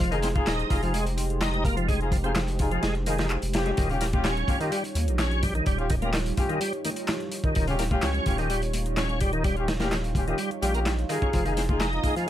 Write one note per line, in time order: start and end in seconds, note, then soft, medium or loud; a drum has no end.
0.00 0.42 F1 loud
0.00 0.11 F3 loud
0.00 3.74 G#3 medium
0.00 3.73 D#4 medium
0.00 3.74 G4 medium
0.00 3.74 C5 medium
0.00 closed hi-hat loud
0.11 0.20 D#3 medium
0.11 0.28 D#4 loud
0.11 0.28 F4 medium
0.11 0.28 G#4 loud
0.11 closed hi-hat soft
0.22 0.28 C4 medium
0.22 snare soft
0.22 closed hi-hat medium
0.22 open hi-hat medium
0.35 0.52 D#4 loud
0.35 0.52 F4 medium
0.35 0.52 G#4 loud
0.35 kick medium
0.35 closed hi-hat soft
0.47 0.65 D#1 loud
0.47 0.81 D#4 medium
0.47 snare loud
0.47 clap loud
0.47 closed hi-hat soft
0.47 closed hi-hat medium
0.59 closed hi-hat soft
0.70 2.78 F1 loud
0.70 0.81 D#4 medium
0.70 0.81 F4 medium
0.70 0.81 G#4 medium
0.70 kick loud
0.70 closed hi-hat medium
0.70 open hi-hat medium
0.83 0.93 F3 medium
0.83 0.99 D#4 medium
0.83 0.99 F4 medium
0.83 0.99 G#4 medium
0.83 closed hi-hat soft
0.94 1.06 G#3 loud
0.94 closed hi-hat soft
0.94 closed hi-hat medium
1.06 closed hi-hat soft
1.18 closed hi-hat medium
1.18 open hi-hat medium
1.30 closed hi-hat soft
1.41 1.64 D#4 medium
1.41 snare loud
1.41 clap loud
1.41 closed hi-hat medium
1.41 closed hi-hat soft
1.54 closed hi-hat soft
1.65 1.76 A#3 medium
1.65 kick medium
1.65 closed hi-hat medium
1.65 open hi-hat medium
1.77 1.87 F3 medium
1.77 closed hi-hat soft
1.88 2.00 G#3 medium
1.88 kick loud
1.88 closed hi-hat soft
1.88 closed hi-hat medium
2.01 2.11 D#4 medium
2.01 2.11 F4 medium
2.01 2.11 G#4 medium
2.01 closed hi-hat soft
2.12 2.17 F3 medium
2.12 kick loud
2.12 closed hi-hat medium
2.12 open hi-hat medium
2.24 2.32 C4 medium
2.24 2.35 D#4 medium
2.24 2.35 F4 medium
2.24 2.35 G#4 medium
2.24 closed hi-hat soft
2.35 2.41 F3 loud
2.35 snare loud
2.35 clap loud
2.35 closed hi-hat loud
2.35 closed hi-hat soft
2.48 closed hi-hat soft
2.59 2.69 D#4 medium
2.59 2.69 F4 medium
2.59 2.69 G#4 medium
2.59 kick medium
2.59 closed hi-hat medium
2.59 open hi-hat medium
2.71 2.82 F3 medium
2.71 2.82 D#4 medium
2.71 2.82 F4 medium
2.71 2.82 G#4 medium
2.71 closed hi-hat soft
2.83 3.37 F1 loud
2.83 2.94 G#3 medium
2.83 snare medium
2.83 closed hi-hat soft
2.83 closed hi-hat medium
2.95 closed hi-hat soft
3.06 3.18 D#3 medium
3.06 3.17 D#4 medium
3.06 3.17 F4 medium
3.06 3.17 G#4 loud
3.06 closed hi-hat medium
3.06 open hi-hat medium
3.18 3.27 D#3 medium
3.18 3.36 D#4 medium
3.18 3.36 F4 medium
3.18 3.36 G#4 medium
3.18 snare loud
3.18 closed hi-hat soft
3.18 closed hi-hat medium
3.30 clap loud
3.30 closed hi-hat soft
3.42 3.73 F1 medium
3.42 closed hi-hat soft
3.42 closed hi-hat medium
3.53 3.87 C#4 medium
3.53 3.87 F4 medium
3.53 3.87 G4 loud
3.53 snare loud
3.53 closed hi-hat medium
3.53 open hi-hat medium
3.66 3.71 G#3 loud
3.66 closed hi-hat soft
3.77 4.44 D#1 loud
3.77 3.89 D#3 loud
3.77 11.30 G3 medium
3.77 12.29 D#4 medium
3.77 12.29 F4 medium
3.77 11.29 C#5 medium
3.77 kick loud
3.77 closed hi-hat soft
3.77 closed hi-hat medium
3.90 3.98 C#3 medium
3.90 4.06 C#4 loud
3.90 4.07 F4 medium
3.90 4.06 G4 loud
3.90 closed hi-hat soft
4.01 4.06 A#3 medium
4.01 snare soft
4.01 closed hi-hat medium
4.01 open hi-hat medium
4.13 4.30 C#4 loud
4.13 4.30 F4 medium
4.13 4.30 G4 loud
4.13 kick medium
4.13 closed hi-hat soft
4.13 high conga medium
4.24 4.59 C#4 medium
4.24 snare loud
4.24 clap loud
4.24 closed hi-hat soft
4.24 closed hi-hat medium
4.37 closed hi-hat soft
4.48 4.59 C#4 medium
4.48 4.59 F4 medium
4.48 4.59 G4 medium
4.48 kick loud
4.48 closed hi-hat medium
4.48 open hi-hat medium
4.48 high conga medium
4.48 low conga medium
4.61 4.71 D#3 medium
4.61 4.77 C#4 medium
4.61 4.77 F4 medium
4.61 4.77 G4 medium
4.61 closed hi-hat soft
4.72 4.83 G3 loud
4.72 closed hi-hat soft
4.72 closed hi-hat medium
4.84 closed hi-hat soft
4.95 5.09 D#2 medium
4.95 closed hi-hat medium
4.95 open hi-hat medium
4.95 high conga medium
5.07 5.62 A#1 medium
5.07 closed hi-hat soft
5.19 5.42 C#4 medium
5.19 snare loud
5.19 clap loud
5.19 closed hi-hat soft
5.19 closed hi-hat medium
5.31 closed hi-hat soft
5.43 5.54 G3 medium
5.43 kick medium
5.43 closed hi-hat medium
5.43 open hi-hat medium
5.55 5.65 D#3 medium
5.55 closed hi-hat soft
5.66 6.33 D#1 loud
5.66 5.78 G3 medium
5.66 kick loud
5.66 closed hi-hat medium
5.66 closed hi-hat soft
5.79 5.89 C#4 medium
5.79 5.89 F4 medium
5.79 5.89 G4 loud
5.79 closed hi-hat soft
5.90 5.95 D#3 medium
5.90 kick medium
5.90 closed hi-hat medium
5.90 open hi-hat medium
6.02 6.10 A#3 medium
6.02 6.13 C#4 medium
6.02 6.13 F4 medium
6.02 6.13 G4 loud
6.02 closed hi-hat soft
6.02 high conga medium
6.13 6.19 D#3 loud
6.13 snare loud
6.13 clap loud
6.13 closed hi-hat soft
6.13 closed hi-hat medium
6.26 closed hi-hat soft
6.37 6.47 C#4 medium
6.37 6.47 F4 medium
6.37 6.47 G4 loud
6.37 kick loud
6.37 closed hi-hat medium
6.37 open hi-hat medium
6.37 high conga medium
6.37 low conga medium
6.49 6.60 D#3 medium
6.49 6.60 C#4 medium
6.49 6.60 F4 medium
6.49 6.60 G4 loud
6.49 closed hi-hat soft
6.61 6.72 G3 medium
6.61 closed hi-hat soft
6.61 closed hi-hat medium
6.73 closed hi-hat soft
6.85 6.90 D#3 medium
6.85 closed hi-hat medium
6.85 open hi-hat medium
6.85 high conga medium
6.96 closed hi-hat soft
7.08 snare loud
7.08 clap loud
7.08 closed hi-hat soft
7.08 closed hi-hat medium
7.20 closed hi-hat soft
7.32 closed hi-hat medium
7.32 open hi-hat medium
7.44 7.54 D#3 medium
7.44 kick loud
7.44 closed hi-hat soft
7.55 7.98 D#1 loud
7.55 7.67 D#3 loud
7.55 kick loud
7.55 closed hi-hat soft
7.55 closed hi-hat medium
7.67 7.76 C#3 medium
7.67 7.84 C#4 loud
7.67 7.84 F4 medium
7.67 7.84 G4 loud
7.67 closed hi-hat soft
7.79 7.84 A#3 medium
7.79 snare soft
7.79 closed hi-hat medium
7.79 open hi-hat medium
7.91 8.08 C#4 loud
7.91 8.08 F4 loud
7.91 8.08 G4 loud
7.91 kick medium
7.91 closed hi-hat soft
7.91 high conga loud
8.02 8.20 C#2 medium
8.02 8.37 C#4 medium
8.02 snare loud
8.02 clap loud
8.02 closed hi-hat medium
8.02 closed hi-hat soft
8.14 closed hi-hat soft
8.26 10.34 D#1 loud
8.26 8.37 C#4 medium
8.26 8.37 F4 medium
8.26 8.37 G4 loud
8.26 kick medium
8.26 closed hi-hat medium
8.26 open hi-hat medium
8.26 high conga medium
8.26 low conga medium
8.38 8.49 D#3 medium
8.38 8.55 C#4 medium
8.38 8.55 F4 medium
8.38 8.55 G4 medium
8.38 closed hi-hat soft
8.50 8.61 G3 loud
8.50 closed hi-hat soft
8.50 closed hi-hat medium
8.62 closed hi-hat soft
8.73 closed hi-hat medium
8.73 open hi-hat medium
8.73 high conga medium
8.86 closed hi-hat soft
8.97 9.20 C#4 medium
8.97 snare loud
8.97 clap loud
8.97 closed hi-hat medium
8.97 closed hi-hat soft
9.09 closed hi-hat soft
9.21 9.32 G3 medium
9.21 kick medium
9.21 closed hi-hat medium
9.21 open hi-hat medium
9.33 9.43 D#3 medium
9.33 closed hi-hat soft
9.44 9.56 G3 medium
9.44 kick loud
9.44 closed hi-hat medium
9.44 closed hi-hat soft
9.57 9.67 C#4 medium
9.57 9.67 F4 medium
9.57 9.67 G4 loud
9.57 closed hi-hat soft
9.68 9.73 D#3 medium
9.68 snare loud
9.68 closed hi-hat medium
9.68 open hi-hat medium
9.80 9.88 A#3 medium
9.80 9.91 C#4 medium
9.80 9.91 F4 medium
9.80 9.91 G4 loud
9.80 snare loud
9.80 closed hi-hat soft
9.80 closed hi-hat medium
9.80 high conga medium
9.92 9.97 D#3 loud
9.92 snare loud
9.92 clap loud
9.92 closed hi-hat medium
9.92 closed hi-hat soft
10.04 closed hi-hat soft
10.15 10.25 C#4 medium
10.15 10.25 F4 medium
10.15 10.25 G4 medium
10.15 kick medium
10.15 closed hi-hat medium
10.15 open hi-hat medium
10.15 high conga medium
10.15 low conga medium
10.28 10.38 D#3 medium
10.28 10.38 C#4 medium
10.28 10.38 F4 medium
10.28 10.38 G4 medium
10.28 closed hi-hat soft
10.38 10.50 G3 medium
10.38 closed hi-hat medium
10.38 closed hi-hat soft
10.51 closed hi-hat soft
10.62 11.05 A#1 medium
10.62 10.74 G3 medium
10.62 10.73 C#4 medium
10.62 10.73 F4 medium
10.62 10.73 G4 loud
10.62 closed hi-hat medium
10.62 open hi-hat medium
10.62 high conga medium
10.74 10.80 A#3 medium
10.74 10.92 C#4 medium
10.74 10.91 F4 medium
10.74 10.91 G4 medium
10.74 closed hi-hat soft
10.86 snare loud
10.86 clap loud
10.86 closed hi-hat medium
10.86 closed hi-hat soft
10.99 closed hi-hat soft
11.09 11.18 D#3 loud
11.09 11.43 D#4 loud
11.09 11.43 F4 medium
11.09 11.43 G#4 loud
11.09 closed hi-hat medium
11.09 open hi-hat medium
11.22 11.30 C#4 medium
11.22 kick medium
11.22 closed hi-hat soft
11.33 12.00 F1 loud
11.33 11.45 F3 loud
11.33 12.29 G#3 medium
11.33 12.29 C5 medium
11.33 kick loud
11.33 closed hi-hat soft
11.33 closed hi-hat loud
11.45 11.53 D#3 medium
11.45 11.62 D#4 loud
11.45 11.62 F4 medium
11.45 11.62 G#4 loud
11.45 closed hi-hat soft
11.57 11.62 C4 medium
11.57 snare soft
11.57 closed hi-hat medium
11.57 open hi-hat medium
11.69 11.86 D#4 loud
11.69 11.86 F4 medium
11.69 11.86 G#4 loud
11.69 kick medium
11.69 closed hi-hat soft
11.69 high conga medium
11.80 12.15 D#4 medium
11.80 snare loud
11.80 clap loud
11.80 closed hi-hat soft
11.80 closed hi-hat medium
11.93 closed hi-hat soft
12.04 12.15 D#4 medium
12.04 12.15 F4 medium
12.04 12.15 G#4 loud
12.04 kick loud
12.04 closed hi-hat medium
12.04 open hi-hat medium
12.04 high conga medium
12.04 low conga medium
12.16 12.27 F3 medium
12.16 12.29 D#4 medium
12.16 12.29 F4 medium
12.16 12.29 G#4 medium
12.16 closed hi-hat soft